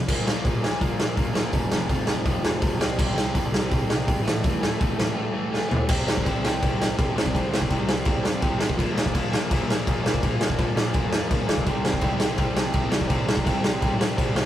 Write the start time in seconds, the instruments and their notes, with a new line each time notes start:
0.08 picked electric bass A#1, distorted electric guitar A#2 F3 A#3, kick, crash
0.25 picked electric bass A#1, distorted electric guitar A#2 F3 A#3, snare
0.44 picked electric bass A#1, distorted electric guitar A#2 F3 A#3, kick, open hi-hat
0.61 picked electric bass A#1, distorted electric guitar A#2 F3 A#3, snare
0.81 picked electric bass A#1, distorted electric guitar A#2 F3 A#3, kick, open hi-hat
0.99 distorted electric guitar A#2 F3 A#3, snare
1.16 picked electric bass A#1, distorted electric guitar A#2 F3 A#3, kick, open hi-hat
1.33 picked electric bass A#1, distorted electric guitar A#2 F3 A#3, snare
1.52 picked electric bass F1, distorted electric guitar F2 C3 F3, kick, open hi-hat
1.70 picked electric bass F1, distorted electric guitar F2 C3 F3, snare
1.89 picked electric bass F1, distorted electric guitar F2 C3 F3, kick, open hi-hat
2.05 picked electric bass F1, distorted electric guitar F2 C3 F3, snare
2.24 picked electric bass F1, distorted electric guitar F2 C3 F3, kick, open hi-hat
2.42 picked electric bass F1, distorted electric guitar F2 C3 F3, snare
2.60 picked electric bass F1, distorted electric guitar F2 C3 F3, kick, open hi-hat
2.78 picked electric bass C2, distorted electric guitar C3 G3 C4, snare
2.97 picked electric bass C2, distorted electric guitar C3 G3 C4, kick, crash
3.14 picked electric bass C2, distorted electric guitar C3 G3 C4, snare
3.34 picked electric bass C2, distorted electric guitar C3 G3 C4, kick, open hi-hat
3.51 picked electric bass C2, distorted electric guitar C3 G3 C4, snare
3.69 picked electric bass C2, distorted electric guitar C3 G3 C4, kick, open hi-hat
3.89 distorted electric guitar C3 G3 C4, snare
4.06 picked electric bass G#1, distorted electric guitar C3 G3 C4, kick, open hi-hat
4.22 picked electric bass A1, distorted electric guitar A2 E3 A3
4.28 snare
4.42 picked electric bass A1, distorted electric guitar A2 E3 A3, kick, open hi-hat
4.60 picked electric bass A1, distorted electric guitar A2 E3 A3, snare
4.79 picked electric bass A1, distorted electric guitar A2 E3 A3, kick, open hi-hat
4.97 picked electric bass A1, distorted electric guitar A2 E3 A3, snare
5.14 distorted electric guitar A2 E3 A3
5.32 distorted electric guitar A2 E3 A3
5.51 distorted electric guitar A2 E3 A3, snare
5.68 distorted electric guitar A2 E3 A3, floor tom
5.88 picked electric bass C2, distorted electric guitar C3 G3 C4, kick, crash
6.06 picked electric bass C2, distorted electric guitar C3 G3 C4, snare
6.17 kick
6.24 picked electric bass C2, distorted electric guitar C3 G3 C4, kick, crash
6.43 picked electric bass C2, distorted electric guitar C3 G3 C4, snare
6.60 picked electric bass C2, distorted electric guitar C3 G3 C4, kick, crash
6.78 distorted electric guitar C3 G3 C4, snare
6.97 picked electric bass C2, distorted electric guitar C3 G3 C4, kick, crash
7.15 picked electric bass C2, distorted electric guitar C3 G3 C4, snare
7.26 kick
7.33 picked electric bass C2, distorted electric guitar C3 G3 C4, kick, crash
7.51 picked electric bass C2, distorted electric guitar C3 G3 C4, snare
7.62 kick
7.69 picked electric bass C2, distorted electric guitar C3 G3 C4, kick, crash
7.87 picked electric bass C2, distorted electric guitar C3 G3 C4, snare
8.05 picked electric bass C2, distorted electric guitar C3 G3 C4, kick, crash
8.23 picked electric bass G2, distorted electric guitar C3 G3 C4, snare
8.40 picked electric bass C2, distorted electric guitar C3 G3 C4, kick, crash
8.57 picked electric bass A#1, distorted electric guitar C3 G3 C4, snare
8.70 kick
8.77 picked electric bass A#1, distorted electric guitar A#2 F3 A#3, kick, crash
8.94 picked electric bass A#1, distorted electric guitar A#2 F3 A#3, snare
9.06 kick
9.13 picked electric bass A#1, distorted electric guitar A#2 F3 A#3, kick, crash
9.30 picked electric bass A#1, distorted electric guitar A#2 F3 A#3, snare
9.49 picked electric bass A#1, distorted electric guitar A#2 F3 A#3, kick, crash
9.68 distorted electric guitar A#2 F3 A#3, snare
9.86 picked electric bass A#1, distorted electric guitar A#2 F3 A#3, kick, crash
10.03 picked electric bass A#1, distorted electric guitar A#2 F3 A#3, snare
10.14 kick
10.22 picked electric bass A#1, distorted electric guitar A#2 F3 A#3, kick, crash
10.40 picked electric bass A#1, distorted electric guitar A#2 F3 A#3, snare
10.50 kick
10.57 picked electric bass A#1, distorted electric guitar A#2 F3 A#3, kick, crash
10.75 picked electric bass A#1, distorted electric guitar A#2 F3 A#3, snare
10.93 picked electric bass A#1, distorted electric guitar A#2 F3 A#3, kick, crash
11.09 picked electric bass F2, distorted electric guitar A#2 F3 A#3, snare
11.28 picked electric bass A#1, distorted electric guitar A#2 F3 A#3, kick, crash
11.46 picked electric bass G1, distorted electric guitar A#2 F3 A#3, snare
11.58 kick
11.66 picked electric bass C2, distorted electric guitar C3 G3 C4, kick, crash
11.84 picked electric bass C2, distorted electric guitar C3 G3 C4, snare
11.94 kick
12.01 picked electric bass C2, distorted electric guitar C3 G3 C4, kick, crash
12.19 picked electric bass C2, distorted electric guitar C3 G3 C4, snare
12.37 picked electric bass C2, distorted electric guitar C3 G3 C4, kick, crash
12.56 distorted electric guitar C3 G3 C4, snare
12.72 picked electric bass C2, distorted electric guitar C3 G3 C4, kick, crash
12.89 picked electric bass C2, distorted electric guitar C3 G3 C4, snare
13.01 kick
13.07 picked electric bass C2, distorted electric guitar C3 G3 C4, kick, crash
13.25 picked electric bass C2, distorted electric guitar C3 G3 C4, snare
13.37 kick
13.44 picked electric bass C2, distorted electric guitar C3 G3 C4, kick, crash
13.62 picked electric bass C2, distorted electric guitar C3 G3 C4, snare
13.81 picked electric bass C2, distorted electric guitar C3 G3 C4, kick, crash
13.97 picked electric bass G2, distorted electric guitar C3 G3 C4
14.01 snare
14.17 picked electric bass C2, distorted electric guitar C3 G3 C4, kick, crash
14.34 picked electric bass C2, distorted electric guitar C3 G3 C4, snare